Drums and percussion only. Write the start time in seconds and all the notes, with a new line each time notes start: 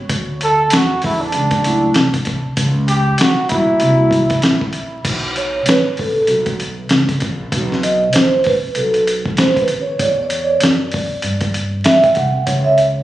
0.09 kick, closed hi-hat
0.41 closed hi-hat
0.70 snare, closed hi-hat
1.02 kick, open hi-hat
1.32 closed hi-hat
1.51 kick, closed hi-hat
1.64 closed hi-hat
1.94 snare, closed hi-hat
2.14 kick, closed hi-hat
2.25 kick, closed hi-hat
2.57 kick, closed hi-hat
2.88 closed hi-hat
3.18 snare, closed hi-hat
3.49 kick, closed hi-hat
3.80 closed hi-hat
4.11 kick, closed hi-hat
4.30 kick, closed hi-hat
4.42 snare, closed hi-hat
4.61 kick
4.73 closed hi-hat
5.05 kick, closed hi-hat, crash
5.36 closed hi-hat
5.66 snare, closed hi-hat
5.97 kick, open hi-hat
6.27 closed hi-hat
6.46 kick, closed hi-hat
6.60 closed hi-hat
6.89 snare, closed hi-hat
7.09 kick, closed hi-hat
7.20 kick, closed hi-hat
7.52 kick, closed hi-hat
7.72 snare
7.83 closed hi-hat
8.13 snare, closed hi-hat
8.44 kick, open hi-hat
8.75 closed hi-hat
8.94 closed hi-hat
9.07 closed hi-hat
9.26 kick
9.37 snare, closed hi-hat
9.56 kick, closed hi-hat
9.68 closed hi-hat
9.99 kick, closed hi-hat
10.30 closed hi-hat
10.60 snare, closed hi-hat
10.92 kick, open hi-hat
11.22 closed hi-hat
11.41 kick, closed hi-hat
11.54 closed hi-hat
11.84 snare, closed hi-hat
12.04 kick, closed hi-hat
12.15 kick, closed hi-hat
12.47 kick, closed hi-hat
12.78 closed hi-hat